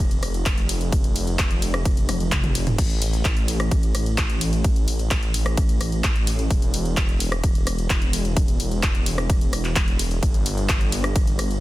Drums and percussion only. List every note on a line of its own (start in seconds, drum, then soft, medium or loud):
0.11 closed hi-hat soft
0.23 cross-stick medium
0.23 open hi-hat loud
0.23 ride medium
0.34 closed hi-hat soft
0.46 kick loud
0.46 clap loud
0.46 closed hi-hat loud
0.46 ride medium
0.58 closed hi-hat soft
0.69 open hi-hat medium
0.69 ride medium
0.81 closed hi-hat soft
0.92 kick loud
0.92 closed hi-hat loud
0.92 ride medium
1.04 closed hi-hat soft
1.16 open hi-hat loud
1.16 ride medium
1.27 closed hi-hat soft
1.39 kick loud
1.39 clap loud
1.39 closed hi-hat loud
1.39 ride medium
1.51 closed hi-hat soft
1.62 open hi-hat medium
1.62 ride medium
1.74 cross-stick medium
1.74 closed hi-hat soft
1.85 kick loud
1.85 closed hi-hat loud
1.85 ride medium
1.97 closed hi-hat soft
2.09 cross-stick medium
2.09 open hi-hat loud
2.09 high tom medium
2.09 ride medium
2.20 closed hi-hat soft
2.32 kick loud
2.32 clap loud
2.32 closed hi-hat loud
2.32 mid tom medium
2.32 ride medium
2.44 closed hi-hat soft
2.44 mid tom medium
2.55 open hi-hat medium
2.55 ride medium
2.67 closed hi-hat soft
2.67 mid tom medium
2.78 kick loud
2.78 closed hi-hat loud
2.78 crash medium
2.78 ride medium
2.90 closed hi-hat soft
3.02 open hi-hat loud
3.02 ride medium
3.13 closed hi-hat soft
3.25 kick loud
3.25 clap loud
3.25 closed hi-hat loud
3.25 ride medium
3.37 closed hi-hat soft
3.48 open hi-hat medium
3.48 ride medium
3.60 cross-stick medium
3.60 closed hi-hat soft
3.71 kick loud
3.71 closed hi-hat loud
3.71 ride medium
3.83 closed hi-hat soft
3.95 cross-stick medium
3.95 open hi-hat loud
3.95 ride medium
4.06 closed hi-hat soft
4.18 kick loud
4.18 clap loud
4.18 closed hi-hat loud
4.18 ride medium
4.30 closed hi-hat soft
4.41 open hi-hat loud
4.41 ride medium
4.53 closed hi-hat soft
4.64 kick loud
4.64 closed hi-hat loud
4.64 ride medium
4.76 closed hi-hat soft
4.88 open hi-hat loud
4.88 ride medium
4.99 closed hi-hat soft
5.11 kick loud
5.11 clap loud
5.11 closed hi-hat loud
5.11 ride medium
5.23 closed hi-hat soft
5.34 open hi-hat medium
5.34 ride medium
5.46 cross-stick medium
5.46 closed hi-hat soft
5.57 kick loud
5.57 closed hi-hat loud
5.57 ride medium
5.69 closed hi-hat soft
5.81 cross-stick medium
5.81 open hi-hat loud
5.81 ride medium
5.92 closed hi-hat soft
6.04 kick loud
6.04 clap loud
6.04 closed hi-hat medium
6.04 ride medium
6.16 closed hi-hat soft
6.27 open hi-hat loud
6.27 ride medium
6.39 closed hi-hat soft
6.50 kick loud
6.50 closed hi-hat medium
6.50 ride medium
6.62 closed hi-hat soft
6.74 open hi-hat loud
6.74 ride medium
6.85 closed hi-hat soft
6.97 kick loud
6.97 clap loud
6.97 closed hi-hat medium
6.97 ride medium
7.09 closed hi-hat soft
7.20 open hi-hat loud
7.20 ride medium
7.32 cross-stick medium
7.32 closed hi-hat soft
7.44 kick loud
7.44 closed hi-hat medium
7.44 ride medium
7.55 closed hi-hat soft
7.67 cross-stick medium
7.67 open hi-hat loud
7.67 ride medium
7.78 closed hi-hat soft
7.90 kick loud
7.90 clap loud
7.90 closed hi-hat medium
7.90 ride medium
8.02 closed hi-hat soft
8.13 open hi-hat loud
8.13 ride medium
8.25 closed hi-hat soft
8.37 kick loud
8.37 closed hi-hat medium
8.37 ride medium
8.48 closed hi-hat soft
8.60 open hi-hat loud
8.60 ride medium
8.71 closed hi-hat soft
8.83 kick loud
8.83 clap loud
8.83 closed hi-hat medium
8.83 ride medium
8.95 closed hi-hat soft
9.06 open hi-hat loud
9.06 ride medium
9.18 cross-stick medium
9.18 closed hi-hat soft
9.30 kick loud
9.30 closed hi-hat medium
9.30 ride medium
9.41 closed hi-hat soft
9.53 cross-stick medium
9.53 open hi-hat loud
9.53 ride medium
9.65 clap soft
9.65 closed hi-hat soft
9.76 kick loud
9.76 clap loud
9.76 closed hi-hat medium
9.76 ride medium
9.88 closed hi-hat soft
9.99 open hi-hat loud
9.99 ride medium
10.11 closed hi-hat soft
10.23 kick loud
10.23 closed hi-hat medium
10.23 ride medium
10.34 closed hi-hat soft
10.46 open hi-hat loud
10.46 ride medium
10.58 closed hi-hat soft
10.69 kick loud
10.69 clap loud
10.69 closed hi-hat medium
10.69 ride medium
10.81 closed hi-hat soft
10.92 open hi-hat medium
10.92 ride medium
11.04 cross-stick medium
11.04 closed hi-hat soft
11.16 kick loud
11.16 closed hi-hat medium
11.16 ride medium
11.27 closed hi-hat soft
11.39 cross-stick medium
11.39 open hi-hat loud
11.39 ride medium
11.51 closed hi-hat soft